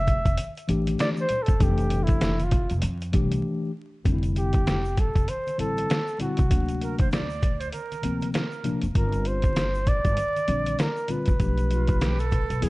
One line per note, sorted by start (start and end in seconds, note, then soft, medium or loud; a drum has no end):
0.00 0.22 F1 loud
0.00 0.57 E5 loud
0.07 kick medium
0.07 closed hi-hat medium
0.07 low conga medium
0.07 shaker soft
0.25 0.36 F1 medium
0.25 kick medium
0.25 closed hi-hat soft
0.25 shaker medium
0.37 closed hi-hat loud
0.37 high conga soft
0.37 shaker medium
0.57 closed hi-hat soft
0.57 shaker soft
0.68 0.93 A1 medium
0.68 1.25 E3 medium
0.68 1.25 A3 medium
0.68 1.25 D4 medium
0.68 1.26 G4 medium
0.68 closed hi-hat medium
0.68 shaker soft
0.87 closed hi-hat medium
0.87 high conga medium
0.87 shaker soft
0.99 1.09 D5 loud
0.99 snare loud
0.99 closed hi-hat medium
0.99 shaker medium
1.17 shaker soft
1.21 1.44 C5 loud
1.29 closed hi-hat medium
1.29 low conga medium
1.29 shaker medium
1.43 1.64 A4 medium
1.43 closed hi-hat medium
1.48 1.58 G1 medium
1.48 kick medium
1.48 shaker medium
1.60 2.66 F1 medium
1.60 2.36 E3 medium
1.60 2.37 A3 medium
1.60 2.37 D4 medium
1.60 2.05 G4 medium
1.60 2.37 A4 medium
1.60 kick loud
1.60 closed hi-hat loud
1.60 shaker medium
1.78 closed hi-hat soft
1.78 shaker medium
1.90 closed hi-hat medium
1.90 low conga medium
1.90 shaker soft
2.03 2.45 E4 medium
2.03 closed hi-hat medium
2.09 kick loud
2.09 shaker soft
2.21 snare loud
2.21 closed hi-hat medium
2.21 shaker medium
2.39 closed hi-hat soft
2.39 high conga medium
2.39 shaker soft
2.44 2.74 F4 medium
2.51 kick medium
2.51 closed hi-hat medium
2.51 low conga medium
2.51 shaker medium
2.70 2.81 F1 medium
2.70 closed hi-hat soft
2.70 shaker medium
2.82 3.15 F2 loud
2.82 closed hi-hat loud
2.82 high conga soft
2.82 shaker medium
3.01 closed hi-hat soft
3.01 shaker soft
3.12 3.38 C2 medium
3.12 3.69 E3 medium
3.12 3.70 A3 medium
3.12 3.70 D4 medium
3.12 3.70 G4 medium
3.12 kick medium
3.12 closed hi-hat medium
3.12 shaker soft
3.31 closed hi-hat medium
3.31 high conga medium
3.31 shaker soft
4.05 5.11 F1 medium
4.05 4.81 D3 medium
4.05 4.81 G3 medium
4.05 4.82 C4 medium
4.05 4.14 D4 medium
4.05 kick loud
4.05 closed hi-hat medium
4.05 shaker medium
4.13 4.85 E4 medium
4.23 closed hi-hat soft
4.23 shaker soft
4.36 5.01 G4 medium
4.36 closed hi-hat medium
4.36 shaker soft
4.53 kick medium
4.53 closed hi-hat soft
4.53 shaker soft
4.67 snare loud
4.67 closed hi-hat medium
4.67 shaker medium
4.85 shaker soft
4.97 5.31 A4 medium
4.97 kick medium
4.97 closed hi-hat medium
4.97 low conga medium
4.97 shaker medium
5.15 5.26 F1 medium
5.15 kick medium
5.15 closed hi-hat soft
5.15 shaker soft
5.28 5.59 C5 loud
5.28 closed hi-hat loud
5.28 high conga soft
5.28 shaker medium
5.47 closed hi-hat soft
5.47 high conga soft
5.47 shaker soft
5.58 5.83 A1 medium
5.58 5.96 D3 medium
5.58 5.96 G3 medium
5.58 5.97 C4 medium
5.58 5.97 E4 medium
5.58 6.17 A4 loud
5.58 closed hi-hat medium
5.58 shaker soft
5.77 closed hi-hat medium
5.77 high conga medium
5.77 shaker soft
5.90 snare loud
5.90 closed hi-hat medium
5.90 shaker medium
6.08 shaker soft
6.19 6.40 D3 medium
6.19 6.40 G3 medium
6.19 6.41 C4 medium
6.19 6.41 E4 medium
6.19 7.09 F#4 medium
6.19 closed hi-hat medium
6.19 low conga medium
6.19 shaker soft
6.37 6.49 C2 medium
6.37 kick medium
6.37 closed hi-hat medium
6.37 shaker soft
6.49 7.69 D2 medium
6.49 7.26 C3 medium
6.49 7.26 F#3 medium
6.49 7.26 A#3 medium
6.49 7.27 D4 medium
6.49 kick loud
6.49 closed hi-hat loud
6.49 shaker medium
6.68 closed hi-hat soft
6.68 shaker soft
6.81 6.98 A#4 medium
6.81 closed hi-hat medium
6.81 shaker soft
6.98 7.11 C5 medium
6.98 kick loud
6.98 closed hi-hat soft
6.98 shaker soft
7.11 7.62 D5 medium
7.11 snare loud
7.11 closed hi-hat medium
7.11 shaker medium
7.30 shaker soft
7.42 kick medium
7.42 closed hi-hat medium
7.42 low conga medium
7.42 shaker medium
7.60 7.72 C5 medium
7.60 closed hi-hat soft
7.60 shaker soft
7.72 8.30 A#4 medium
7.72 closed hi-hat loud
7.72 high conga soft
7.72 shaker medium
7.92 closed hi-hat soft
7.92 high conga soft
7.92 shaker soft
8.02 8.28 D2 medium
8.02 8.41 C3 medium
8.02 8.41 F3 medium
8.02 8.42 A#3 medium
8.02 8.42 C4 medium
8.02 closed hi-hat medium
8.02 shaker soft
8.21 closed hi-hat medium
8.21 high conga soft
8.21 shaker soft
8.34 8.80 A#4 medium
8.34 snare loud
8.34 closed hi-hat medium
8.34 shaker medium
8.52 shaker soft
8.64 8.85 C3 medium
8.64 8.85 F3 medium
8.64 8.85 A#3 medium
8.64 8.86 D4 medium
8.64 closed hi-hat medium
8.64 low conga medium
8.64 shaker soft
8.81 8.93 F1 medium
8.81 closed hi-hat soft
8.81 shaker soft
8.94 10.01 G1 loud
8.94 9.71 D3 medium
8.94 9.71 G3 medium
8.94 9.71 C4 medium
8.94 9.72 F4 medium
8.94 9.29 A#4 medium
8.94 kick loud
8.94 closed hi-hat medium
8.94 shaker medium
9.12 closed hi-hat soft
9.12 shaker medium
9.25 9.90 C5 loud
9.25 closed hi-hat medium
9.25 shaker soft
9.42 kick loud
9.42 closed hi-hat soft
9.42 shaker soft
9.56 snare loud
9.56 closed hi-hat medium
9.56 shaker medium
9.74 shaker soft
9.86 10.83 D5 loud
9.86 kick medium
9.86 closed hi-hat medium
9.86 low conga medium
9.86 shaker soft
10.05 10.15 G1 medium
10.05 kick medium
10.05 closed hi-hat soft
10.05 shaker soft
10.17 closed hi-hat loud
10.17 high conga soft
10.17 shaker medium
10.36 closed hi-hat soft
10.36 high conga soft
10.36 shaker soft
10.47 10.73 A#1 medium
10.47 10.86 D3 medium
10.47 10.86 G3 medium
10.47 10.86 C4 medium
10.47 10.86 D4 medium
10.47 closed hi-hat medium
10.47 shaker soft
10.66 closed hi-hat medium
10.66 high conga medium
10.66 shaker soft
10.79 11.13 A#4 medium
10.79 snare loud
10.79 closed hi-hat medium
10.79 shaker medium
10.96 shaker soft
11.08 11.29 D3 medium
11.08 11.30 G3 medium
11.08 11.30 C4 medium
11.08 11.30 F4 medium
11.08 12.69 B4 medium
11.08 closed hi-hat medium
11.08 low conga medium
11.08 shaker soft
11.26 11.38 A1 medium
11.26 kick medium
11.26 closed hi-hat medium
11.26 shaker soft
11.39 12.46 B1 loud
11.39 12.16 F3 medium
11.39 12.16 A3 medium
11.39 12.16 D4 medium
11.39 12.17 G4 medium
11.39 kick loud
11.39 closed hi-hat medium
11.39 shaker medium
11.58 closed hi-hat soft
11.58 shaker soft
11.71 12.03 F4 medium
11.71 closed hi-hat medium
11.71 shaker soft
11.88 kick loud
11.88 closed hi-hat medium
11.88 shaker soft
12.01 12.21 G4 medium
12.01 snare loud
12.01 closed hi-hat medium
12.01 shaker medium
12.19 12.65 A4 medium
12.19 closed hi-hat soft
12.19 shaker soft
12.32 kick medium
12.32 closed hi-hat medium
12.32 low conga medium
12.32 shaker medium
12.50 12.60 B1 medium
12.50 closed hi-hat soft
12.50 shaker soft
12.61 12.69 E2 loud
12.61 12.69 F#3 medium
12.61 12.69 B3 medium
12.61 12.69 E4 medium
12.61 12.69 G#4 medium
12.61 closed hi-hat loud
12.61 high conga soft
12.61 shaker medium